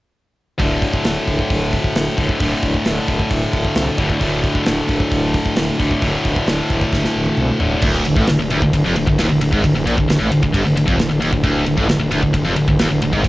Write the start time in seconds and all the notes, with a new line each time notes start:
0.58 D1 D2 A2 D3, kick, open hi-hat
0.82 kick, open hi-hat
0.94 kick
1.04 D1, snare, open hi-hat
1.28 D1, kick, open hi-hat
1.39 kick
1.50 D1, kick, open hi-hat
1.73 kick, open hi-hat
1.84 kick
1.95 D1, snare, open hi-hat
2.17 D1 D2 A2 D3, kick, open hi-hat
2.29 kick
2.39 D1 D2 A2 D3, kick, open hi-hat
2.62 D1, kick, open hi-hat
2.74 kick
2.85 D1, snare, open hi-hat
3.08 D1, kick, open hi-hat
3.19 kick
3.31 D1, kick, open hi-hat
3.53 D1, kick, open hi-hat
3.65 kick
3.75 C2, snare, open hi-hat
3.98 D1 D2 A2 D3, kick, open hi-hat
4.10 kick
4.19 D1 D2 A2 D3, kick, open hi-hat
4.44 kick, open hi-hat
4.55 kick
4.66 D1, snare, open hi-hat
4.89 D1, kick, open hi-hat
5.00 kick
5.12 D1, kick, open hi-hat
5.34 kick, open hi-hat
5.46 kick
5.56 D1, snare, open hi-hat
5.79 D1 D2 A2 D3, kick, open hi-hat
5.91 kick
6.00 D1 D2 A2 D3, kick, open hi-hat
6.25 D1, kick, open hi-hat
6.36 kick
6.47 D1, snare, open hi-hat
6.70 D1, kick, open hi-hat
6.81 kick
6.92 D1, kick, snare
7.04 snare
7.16 D1
7.26 high tom
7.37 C2, mid tom
7.59 D1 D2 A2 D3, floor tom
7.71 floor tom
7.82 D1 D2, kick, crash
8.05 D1 D2, ride
8.16 A1 A2, kick
8.27 D1 D2, snare, ride
8.39 D1 D2
8.50 D1 D2, ride
8.62 D1 D2, kick
8.73 D1 D2, kick, ride
8.84 F1 F2
8.96 D1 D2, ride
9.06 D1 D2, kick
9.18 D#1 D#2, snare, ride
9.29 D1 D2
9.41 D1 D2, ride
9.52 G#1 G#2, kick
9.64 D1 D2, kick, ride
9.75 D1 D2
9.86 A#1 A#2, ride
9.97 D1 D2, kick
10.08 D1 D2, snare, ride
10.19 A1 A2
10.30 D1 D2, ride
10.42 D1 D2, kick
10.53 G1 G2, kick, ride
10.65 D1 D2
10.76 D1 D2, ride
10.86 F1 F2, kick
10.98 D1 D2, snare, ride
11.09 D1 D2
11.20 D#1 D#2, ride
11.32 D1 D2, kick
11.44 D1 D2, kick, ride
11.66 D1 D2, ride
11.77 A1 A2, kick
11.89 D1 D2, snare, ride
11.99 D1 D2
12.11 D1 D2, ride
12.23 D1 D2, kick
12.33 D1 D2, kick, ride
12.45 F1 F2
12.56 D1 D2, ride
12.68 D1 D2, kick
12.79 D#1 D#2, snare, ride
12.90 D1 D2
13.02 D1 D2, ride
13.13 G#1 G#2, kick
13.23 D1 D2, kick, ride